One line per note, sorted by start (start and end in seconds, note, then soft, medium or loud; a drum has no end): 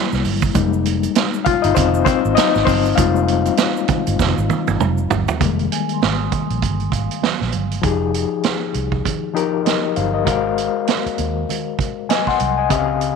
0.00 0.21 G3 medium
0.00 0.21 A#3 medium
0.00 0.22 E4 medium
0.12 0.23 C2 medium
0.12 snare soft
0.12 shaker soft
0.24 0.51 G1 medium
0.24 open hi-hat medium
0.24 high conga medium
0.24 shaker soft
0.42 kick loud
0.42 shaker medium
0.55 1.06 F1 loud
0.55 2.94 G3 medium
0.55 2.94 G#3 soft
0.55 2.94 A#3 soft
0.55 1.64 D#4 medium
0.55 kick loud
0.55 closed hi-hat loud
0.55 muted conga medium
0.55 shaker medium
0.73 shaker soft
0.85 closed hi-hat medium
0.85 shaker soft
1.03 closed hi-hat soft
1.03 shaker soft
1.15 snare loud
1.15 closed hi-hat medium
1.15 high conga medium
1.15 shaker medium
1.34 shaker medium
1.45 1.63 F4 medium
1.45 1.64 F5 loud
1.45 muted fingered electric bass stroke soft
1.45 kick loud
1.45 closed hi-hat medium
1.62 1.75 G1 medium
1.62 1.76 D#4 medium
1.62 1.76 D#5 medium
1.62 closed hi-hat medium
1.62 shaker soft
1.75 2.02 F1 loud
1.75 2.05 C4 medium
1.75 2.04 C5 loud
1.75 kick medium
1.75 closed hi-hat medium
1.75 muted conga medium
1.75 low conga medium
1.75 shaker medium
1.94 shaker medium
2.05 2.36 C4 medium
2.05 2.37 C5 loud
2.05 kick loud
2.05 closed hi-hat medium
2.05 shaker soft
2.25 2.36 G#1 medium
2.25 shaker medium
2.35 2.66 D#4 medium
2.35 2.67 D#5 loud
2.35 snare medium
2.35 closed hi-hat loud
2.35 high conga medium
2.35 shaker medium
2.55 2.66 G#1 medium
2.55 snare soft
2.55 shaker soft
2.65 2.93 G1 medium
2.65 2.96 C4 medium
2.65 2.98 C5 medium
2.65 kick loud
2.65 open hi-hat medium
2.65 high conga medium
2.65 shaker soft
2.85 shaker medium
2.95 3.49 F1 loud
2.95 5.36 G3 medium
2.95 5.36 G#3 soft
2.95 5.37 A#3 soft
2.95 5.37 D#4 medium
2.95 5.07 F4 medium
2.95 5.05 F5 medium
2.95 kick loud
2.95 closed hi-hat medium
2.95 muted conga medium
2.95 shaker medium
3.16 shaker soft
3.28 closed hi-hat medium
3.45 closed hi-hat soft
3.45 shaker soft
3.57 snare loud
3.57 closed hi-hat medium
3.57 high conga medium
3.57 shaker medium
3.77 shaker medium
3.88 muted fingered electric bass stroke soft
3.88 kick loud
3.88 closed hi-hat medium
3.88 low conga medium
3.88 shaker soft
4.07 4.18 G1 medium
4.07 closed hi-hat medium
4.07 shaker soft
4.19 4.34 F1 loud
4.19 kick medium
4.19 snare medium
4.19 muted conga medium
4.19 low conga medium
4.19 shaker medium
4.38 4.48 G#1 loud
4.38 shaker soft
4.50 high tom medium
4.50 shaker soft
4.67 4.78 G1 medium
4.67 high tom medium
4.67 shaker soft
4.80 5.06 F1 medium
4.80 mid tom medium
4.80 high conga medium
4.80 shaker medium
4.98 shaker soft
5.10 5.26 G1 medium
5.10 floor tom loud
5.10 high conga medium
5.10 shaker soft
5.28 floor tom loud
5.28 shaker medium
5.40 5.66 F1 medium
5.40 6.27 D#3 soft
5.40 6.27 G3 soft
5.40 6.28 G#3 soft
5.40 6.28 A#3 medium
5.40 kick loud
5.40 closed hi-hat medium
5.40 muted conga soft
5.59 closed hi-hat soft
5.72 7.75 G#5 medium
5.72 closed hi-hat medium
5.89 closed hi-hat soft
5.93 7.93 C6 soft
6.02 6.28 G#1 medium
6.02 snare loud
6.02 high conga medium
6.12 8.10 D#6 medium
6.32 kick medium
6.32 closed hi-hat medium
6.32 low conga medium
6.50 6.61 A#1 medium
6.50 closed hi-hat soft
6.62 6.88 G1 medium
6.62 kick medium
6.62 closed hi-hat medium
6.62 muted conga soft
6.62 low conga medium
6.80 closed hi-hat soft
6.92 7.07 G#1 medium
6.92 8.10 F5 medium
6.92 kick medium
6.92 closed hi-hat medium
7.11 closed hi-hat medium
7.22 snare medium
7.22 high conga medium
7.40 7.52 A#1 medium
7.40 snare soft
7.40 high conga soft
7.52 7.79 G1 medium
7.52 closed hi-hat medium
7.52 high conga medium
7.71 closed hi-hat soft
7.82 8.24 F1 medium
7.82 8.61 F3 medium
7.82 8.62 D#4 medium
7.82 8.62 G4 medium
7.82 8.62 G#4 medium
7.82 kick loud
7.82 closed hi-hat medium
7.82 muted conga soft
8.14 closed hi-hat medium
8.43 snare loud
8.43 closed hi-hat medium
8.43 high conga medium
8.74 9.00 C2 medium
8.74 closed hi-hat medium
8.92 kick medium
9.05 kick medium
9.05 closed hi-hat medium
9.05 muted conga soft
9.05 low conga medium
9.34 9.92 F3 medium
9.34 9.93 D#4 medium
9.34 9.93 G4 medium
9.34 9.65 A#4 medium
9.34 closed hi-hat medium
9.65 9.95 A#4 soft
9.65 9.94 D#5 medium
9.65 snare medium
9.65 closed hi-hat medium
9.65 high conga medium
9.96 10.27 G1 medium
9.96 10.13 C5 soft
9.96 10.13 F5 medium
9.96 closed hi-hat medium
9.96 high conga medium
10.14 10.25 A#4 soft
10.14 10.43 D#5 medium
10.25 10.67 G#1 medium
10.25 11.04 G#3 medium
10.25 11.04 F#4 medium
10.25 11.05 A#4 medium
10.25 11.05 C5 medium
10.25 11.05 F5 medium
10.25 kick medium
10.25 closed hi-hat medium
10.25 muted conga soft
10.58 closed hi-hat medium
10.87 snare loud
10.87 closed hi-hat medium
10.87 high conga medium
11.06 muted fingered electric bass stroke soft
11.06 closed hi-hat soft
11.18 11.44 D#2 medium
11.18 closed hi-hat medium
11.18 low conga medium
11.49 closed hi-hat medium
11.49 muted conga soft
11.49 low conga medium
11.79 kick medium
11.79 closed hi-hat medium
11.79 muted conga soft
12.09 12.26 D#5 medium
12.09 12.26 G#5 medium
12.09 snare loud
12.09 closed hi-hat medium
12.09 high conga medium
12.27 12.56 F#5 medium
12.27 12.56 C6 medium
12.27 kick medium
12.27 snare soft
12.40 12.71 C2 medium
12.40 closed hi-hat medium
12.40 high conga medium
12.58 12.70 D#5 soft
12.58 12.86 G#5 medium
12.69 13.10 C#2 medium
12.69 13.16 C#3 medium
12.69 13.16 C4 medium
12.69 13.16 G4 medium
12.69 13.16 D#5 medium
12.69 12.79 E5 medium
12.69 kick loud
12.69 closed hi-hat medium
12.69 muted conga soft
12.79 13.16 F5 medium
13.01 closed hi-hat medium